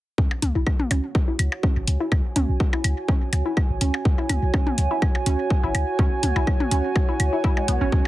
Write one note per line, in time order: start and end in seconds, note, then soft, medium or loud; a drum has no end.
0.18 0.28 C#2 medium
0.18 0.23 C#4 medium
0.18 8.08 F#4 medium
0.18 kick loud
0.31 percussion blips medium
0.42 0.52 C#2 medium
0.42 closed hi-hat medium
0.42 mid tom medium
0.55 0.64 B1 medium
0.55 0.60 E4 medium
0.66 8.08 C#5 medium
0.66 kick loud
0.66 claves medium
0.80 mid tom medium
0.91 1.01 C#2 medium
0.91 0.96 C#4 medium
0.91 closed hi-hat medium
0.91 percussion blips medium
1.15 kick loud
1.28 1.32 E4 medium
1.39 1.49 C#2 medium
1.39 closed hi-hat medium
1.39 claves medium
1.52 percussion blips medium
1.56 8.08 G#5 medium
1.63 1.68 C#4 medium
1.63 kick loud
1.76 1.85 G#1 medium
1.88 1.97 C#2 loud
1.88 closed hi-hat medium
2.00 2.05 E4 medium
2.12 2.21 C#2 medium
2.12 kick loud
2.12 claves medium
2.12 percussion blips medium
2.36 2.46 C#2 medium
2.36 2.41 C#4 medium
2.36 closed hi-hat medium
2.36 mid tom medium
2.49 2.57 B1 medium
2.60 kick loud
2.73 2.77 E4 medium
2.73 percussion blips medium
2.84 2.94 C#2 medium
2.84 closed hi-hat medium
2.84 claves medium
3.08 3.13 C#4 medium
3.08 kick loud
3.33 3.42 C#2 medium
3.33 closed hi-hat medium
3.33 percussion blips medium
3.46 3.50 E4 medium
3.57 kick loud
3.57 claves medium
3.70 3.78 G#1 medium
3.81 3.91 C#2 medium
3.81 3.86 C#4 medium
3.81 closed hi-hat medium
3.94 percussion blips medium
4.05 4.15 C#2 medium
4.05 kick loud
4.18 4.23 E4 medium
4.29 4.39 C#2 medium
4.29 closed hi-hat medium
4.29 mid tom medium
4.29 claves medium
4.42 4.51 B1 medium
4.54 4.59 C#4 medium
4.54 kick loud
4.54 percussion blips medium
4.67 mid tom medium
4.78 4.88 C#2 medium
4.78 closed hi-hat medium
4.91 4.95 E4 medium
5.02 kick loud
5.02 claves medium
5.15 percussion blips medium
5.26 5.36 C#2 medium
5.26 5.31 C#4 medium
5.26 closed hi-hat medium
5.50 kick loud
5.63 5.72 G#1 medium
5.63 5.68 E4 medium
5.75 5.84 C#2 medium
5.75 closed hi-hat medium
5.75 claves medium
5.75 percussion blips medium
5.99 6.09 C#2 loud
5.99 6.04 C#4 medium
5.99 kick loud
6.23 6.33 C#2 medium
6.23 closed hi-hat medium
6.23 mid tom medium
6.36 6.44 B1 medium
6.36 6.40 E4 medium
6.36 percussion blips medium
6.47 kick loud
6.47 claves medium
6.60 mid tom medium
6.71 6.81 C#2 medium
6.71 6.76 C#4 medium
6.71 closed hi-hat medium
6.96 kick loud
6.96 percussion blips medium
7.09 7.13 E4 medium
7.20 7.30 C#2 medium
7.20 closed hi-hat medium
7.20 claves medium
7.33 7.39 E4 medium
7.44 7.49 E4 loud
7.44 kick loud
7.57 7.61 G#3 medium
7.57 percussion blips medium
7.68 7.78 B1 medium
7.68 7.76 B3 loud
7.68 closed hi-hat medium
7.81 7.90 G#1 medium
7.81 7.84 C#4 medium
7.92 8.02 C#2 medium
7.92 7.97 C#4 medium
7.92 kick loud